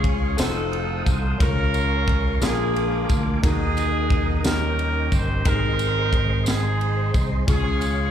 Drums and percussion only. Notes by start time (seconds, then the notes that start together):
0.04 kick, ride
0.38 snare, ride, tambourine
0.73 ride
1.06 kick, ride, tambourine
1.40 kick, ride, tambourine
1.74 ride, tambourine
2.08 kick, ride
2.42 snare, ride, tambourine
2.76 ride
3.09 kick, ride, tambourine
3.44 kick, ride, tambourine
3.77 ride, tambourine
4.10 kick, ride
4.44 snare, ride, tambourine
4.79 ride
5.12 kick, ride, tambourine
5.45 kick, ride, tambourine
5.79 ride, tambourine
6.13 kick, ride
6.46 snare, ride, tambourine
6.81 ride
7.14 kick, ride, tambourine
7.48 kick, ride, tambourine
7.81 ride, tambourine